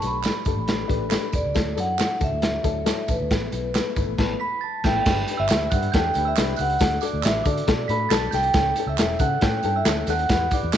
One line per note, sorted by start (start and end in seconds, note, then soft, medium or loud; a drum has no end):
0.01 0.28 B1 medium
0.01 0.16 A3 medium
0.01 0.16 D4 medium
0.01 0.17 G4 medium
0.01 0.17 B4 medium
0.01 closed hi-hat medium
0.01 tambourine medium
0.07 1.40 B5 loud
0.24 0.39 A3 medium
0.24 0.39 D4 medium
0.24 0.39 G4 medium
0.24 0.39 B4 medium
0.24 snare medium
0.24 clap medium
0.24 closed hi-hat medium
0.24 tambourine medium
0.45 0.55 G1 medium
0.45 0.60 A3 medium
0.45 0.61 D4 medium
0.45 0.61 G4 medium
0.45 0.61 A4 medium
0.45 kick medium
0.45 closed hi-hat medium
0.45 tambourine medium
0.57 0.83 A1 medium
0.67 0.82 A3 medium
0.67 0.82 D4 medium
0.67 0.83 G4 medium
0.67 0.83 B4 medium
0.67 snare loud
0.67 closed hi-hat medium
0.67 tambourine soft
0.88 1.15 A1 medium
0.88 1.03 A3 loud
0.88 1.03 D4 loud
0.88 1.03 G4 loud
0.88 1.04 B4 loud
0.88 kick medium
0.88 closed hi-hat medium
1.09 1.25 A3 loud
1.09 1.25 D4 loud
1.09 1.25 G4 loud
1.09 1.25 B4 loud
1.09 snare loud
1.09 clap medium
1.09 closed hi-hat medium
1.09 tambourine medium
1.32 1.42 E1 medium
1.32 1.47 A3 medium
1.32 1.48 D4 medium
1.32 1.48 G4 medium
1.32 1.48 B4 medium
1.32 1.80 D5 medium
1.32 kick medium
1.32 closed hi-hat medium
1.32 tambourine medium
1.45 1.53 C#2 medium
1.54 1.77 D2 loud
1.54 1.69 F#3 medium
1.54 1.69 D4 medium
1.54 1.70 E4 medium
1.54 1.70 A4 medium
1.54 kick loud
1.54 snare loud
1.54 closed hi-hat medium
1.54 tambourine soft
1.75 2.03 F#2 medium
1.75 1.91 F#3 medium
1.75 1.91 D4 medium
1.75 1.91 E4 medium
1.75 1.91 A4 medium
1.75 closed hi-hat medium
1.75 tambourine medium
1.80 2.24 F#5 medium
1.97 2.13 F#3 medium
1.97 2.13 D4 medium
1.97 2.13 E4 medium
1.97 2.13 A4 medium
1.97 snare loud
1.97 clap medium
1.97 closed hi-hat medium
1.97 tambourine loud
2.19 2.30 C#2 medium
2.19 2.35 F#3 medium
2.19 2.35 D4 medium
2.19 2.35 E4 medium
2.19 2.35 A4 medium
2.19 kick medium
2.19 closed hi-hat medium
2.19 tambourine medium
2.24 3.13 E5 medium
2.32 2.58 D2 medium
2.41 2.57 F#3 medium
2.41 2.57 D4 medium
2.41 2.57 E4 medium
2.41 2.57 A4 medium
2.41 snare loud
2.41 closed hi-hat medium
2.62 2.90 D2 medium
2.62 2.78 F#3 medium
2.62 2.79 D4 medium
2.62 2.79 E4 medium
2.62 2.79 A4 loud
2.62 kick medium
2.62 closed hi-hat medium
2.62 tambourine soft
2.85 3.00 F#3 loud
2.85 3.00 D4 loud
2.85 3.01 E4 medium
2.85 3.01 A4 loud
2.85 snare medium
2.85 clap loud
2.85 closed hi-hat medium
2.85 tambourine medium
3.08 3.17 A1 medium
3.08 3.23 F#3 medium
3.08 3.23 D4 medium
3.08 3.23 E4 medium
3.08 3.23 A4 medium
3.08 4.37 B4 medium
3.08 kick medium
3.08 closed hi-hat medium
3.08 tambourine medium
3.20 3.29 D2 medium
3.30 3.48 A1 loud
3.30 3.45 A3 medium
3.30 3.45 B3 medium
3.30 3.45 E4 medium
3.30 3.45 B4 medium
3.30 kick loud
3.30 snare loud
3.30 closed hi-hat medium
3.30 tambourine soft
3.51 3.78 B1 medium
3.51 3.66 A3 medium
3.51 3.66 B3 medium
3.51 3.66 E4 medium
3.51 3.67 B4 medium
3.51 closed hi-hat medium
3.51 tambourine medium
3.74 3.89 A3 medium
3.74 3.89 B3 medium
3.74 3.89 E4 medium
3.74 3.89 B4 medium
3.74 snare loud
3.74 clap medium
3.74 closed hi-hat medium
3.74 tambourine medium
3.96 4.05 G1 medium
3.96 4.11 A3 medium
3.96 4.11 B3 medium
3.96 4.11 E4 medium
3.96 4.12 B4 loud
3.96 4.17 B5 medium
3.96 kick medium
3.96 closed hi-hat medium
3.96 tambourine medium
4.07 4.16 A1 medium
4.17 4.33 A1 loud
4.17 4.33 A3 medium
4.17 4.33 B3 medium
4.17 4.34 E4 medium
4.17 4.34 B4 medium
4.17 4.33 A5 medium
4.17 kick loud
4.17 snare loud
4.17 crash medium
4.40 4.63 B5 loud
4.40 4.60 B6 medium
4.61 4.85 A5 medium
4.61 4.82 A6 medium
4.84 4.99 A1 medium
4.84 4.99 A3 medium
4.84 5.00 B3 medium
4.84 4.99 E4 medium
4.84 5.00 B4 medium
4.84 5.00 E5 medium
4.84 5.41 G5 medium
4.84 5.35 G6 medium
4.84 kick loud
4.84 snare medium
4.84 crash medium
5.06 5.23 G1 loud
5.06 5.21 D4 medium
5.06 5.21 G4 medium
5.06 5.22 B4 loud
5.06 kick loud
5.06 snare loud
5.06 crash loud
5.06 tambourine medium
5.28 5.43 D4 medium
5.28 5.43 G4 medium
5.28 5.43 B4 medium
5.28 closed hi-hat medium
5.28 tambourine medium
5.37 5.48 G1 loud
5.37 5.73 E5 loud
5.37 5.69 E6 medium
5.49 5.67 D2 medium
5.49 5.64 D4 medium
5.49 5.65 G4 medium
5.49 5.65 B4 medium
5.49 snare loud
5.49 clap loud
5.49 closed hi-hat medium
5.49 tambourine loud
5.70 5.88 G2 medium
5.70 5.86 D4 medium
5.70 5.86 G4 medium
5.70 5.87 B4 medium
5.70 5.93 F#5 loud
5.70 5.91 F#6 medium
5.70 kick loud
5.70 closed hi-hat medium
5.70 tambourine medium
5.83 closed hi-hat medium
5.92 6.11 E2 loud
5.92 6.08 D4 loud
5.92 6.09 G4 medium
5.92 6.27 G5 medium
5.92 6.23 G6 medium
5.92 kick loud
5.92 snare loud
5.92 closed hi-hat medium
5.92 tambourine soft
5.96 6.09 A4 loud
6.14 6.32 D2 medium
6.14 6.30 D4 medium
6.14 6.31 G4 medium
6.14 closed hi-hat medium
6.14 tambourine soft
6.18 6.31 B4 medium
6.25 6.57 E5 medium
6.25 6.56 E6 medium
6.36 6.54 C2 loud
6.36 6.52 D4 medium
6.36 6.52 G4 medium
6.36 6.52 B4 loud
6.36 snare loud
6.36 clap loud
6.36 closed hi-hat loud
6.36 tambourine loud
6.56 6.76 C#2 medium
6.56 6.74 D4 medium
6.56 6.74 G4 medium
6.56 6.99 F#6 medium
6.56 closed hi-hat medium
6.56 tambourine medium
6.61 6.74 B4 medium
6.61 7.01 F#5 loud
6.70 closed hi-hat soft
6.79 6.98 D2 loud
6.79 6.95 D4 medium
6.79 6.95 F#4 medium
6.79 6.95 A4 loud
6.79 kick loud
6.79 snare loud
6.79 closed hi-hat loud
6.79 tambourine soft
7.01 7.16 D4 medium
7.01 7.17 F#4 medium
7.01 7.17 A4 medium
7.01 7.22 D6 medium
7.01 closed hi-hat medium
7.01 tambourine medium
7.05 7.24 D5 medium
7.13 7.22 D2 loud
7.22 7.41 A1 medium
7.22 7.39 D4 medium
7.22 7.39 F#4 medium
7.22 7.39 B4 medium
7.22 7.45 E5 medium
7.22 7.44 E6 medium
7.22 snare loud
7.22 clap loud
7.22 closed hi-hat medium
7.22 tambourine loud
7.44 7.63 D3 loud
7.44 7.60 D4 medium
7.44 7.60 F#4 medium
7.44 7.61 A4 medium
7.44 7.92 D5 medium
7.44 7.86 D6 medium
7.44 kick medium
7.44 closed hi-hat medium
7.44 tambourine medium
7.57 closed hi-hat medium
7.67 7.85 B2 medium
7.67 7.82 D4 medium
7.67 7.82 F#4 medium
7.67 7.82 A4 loud
7.67 kick loud
7.67 snare loud
7.67 closed hi-hat loud
7.88 8.06 A2 medium
7.88 8.04 D4 medium
7.88 8.04 F#4 medium
7.88 8.05 A4 medium
7.88 8.12 B5 loud
7.88 8.09 B6 medium
7.88 closed hi-hat medium
8.09 8.28 B1 loud
8.09 8.25 D4 medium
8.09 8.26 F#4 medium
8.09 8.26 A4 loud
8.09 8.32 A5 medium
8.09 8.31 A6 medium
8.09 snare loud
8.09 clap loud
8.09 closed hi-hat medium
8.09 tambourine loud
8.31 8.50 C2 medium
8.31 8.48 D4 medium
8.31 8.48 F#4 medium
8.31 8.48 A4 medium
8.31 8.90 G5 loud
8.31 8.83 G6 medium
8.31 snare soft
8.31 closed hi-hat medium
8.31 tambourine medium
8.43 closed hi-hat soft
8.54 8.71 C#2 loud
8.54 8.69 C#4 medium
8.54 8.70 E4 medium
8.54 8.70 A4 loud
8.54 kick loud
8.54 snare loud
8.54 closed hi-hat medium
8.54 tambourine soft
8.76 8.92 C#4 medium
8.76 8.92 E4 medium
8.76 8.93 A4 medium
8.76 closed hi-hat medium
8.76 tambourine medium
8.87 8.96 C#2 loud
8.87 9.22 E5 medium
8.87 9.18 E6 medium
8.98 9.15 E1 medium
8.98 9.13 C#4 medium
8.98 9.14 E4 medium
8.98 9.14 A4 medium
8.98 snare loud
8.98 clap loud
8.98 closed hi-hat medium
8.98 tambourine loud
9.19 9.37 C#3 loud
9.19 9.35 C#4 medium
9.19 9.35 E4 medium
9.19 9.35 A4 medium
9.19 9.41 F#5 medium
9.19 9.41 F#6 medium
9.19 kick loud
9.19 closed hi-hat medium
9.19 tambourine medium
9.41 9.59 A2 medium
9.41 9.56 C#4 loud
9.41 9.57 E4 medium
9.41 9.57 A4 loud
9.41 kick loud
9.41 snare loud
9.41 closed hi-hat medium
9.63 9.81 G2 medium
9.63 9.78 C#4 medium
9.63 9.79 E4 medium
9.63 9.79 A4 medium
9.63 closed hi-hat medium
9.63 tambourine soft
9.76 10.10 E5 medium
9.76 10.06 E6 medium
9.85 10.03 D2 medium
9.85 10.01 C#4 medium
9.85 10.01 E4 medium
9.85 10.01 A4 loud
9.85 snare loud
9.85 clap loud
9.85 closed hi-hat loud
9.85 tambourine loud
10.07 10.25 D#2 loud
10.07 10.22 C#4 medium
10.07 10.23 E4 medium
10.07 10.23 A4 medium
10.07 10.54 F#5 medium
10.07 10.50 F#6 medium
10.07 snare soft
10.07 closed hi-hat medium
10.07 tambourine medium
10.19 closed hi-hat soft
10.29 10.46 E2 loud
10.29 10.44 E4 medium
10.29 10.45 G4 medium
10.29 10.45 B4 loud
10.29 kick loud
10.29 snare loud
10.29 closed hi-hat medium
10.29 tambourine medium
10.51 10.67 E4 medium
10.51 10.67 G4 medium
10.51 10.67 B4 medium
10.51 10.75 D5 medium
10.51 10.73 D6 medium
10.51 kick loud
10.51 closed hi-hat medium
10.51 tambourine medium
10.63 10.71 E2 loud
10.72 10.77 B1 medium
10.72 snare loud
10.72 clap loud
10.72 closed hi-hat medium
10.72 tambourine loud